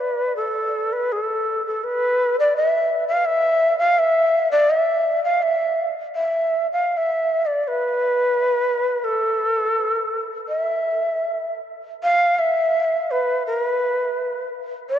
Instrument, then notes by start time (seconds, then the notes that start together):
shakuhachi
0.00 B4
0.37 A4
0.93 B4
1.12 A4
1.67 A4
1.84 B4
2.40 D5
2.56 E5
3.08 F5
3.25 E5
3.79 F5
3.99 E5
4.52 D5
4.70 E5
5.24 F5
5.42 E5
6.16 E5
6.72 F5
6.93 F5
6.97 E5
7.46 D5
7.64 B4 D5
9.04 A4
10.49 E5
12.03 F5
12.39 E5
13.11 B4
13.46 A#4
13.64 B4
14.89 D5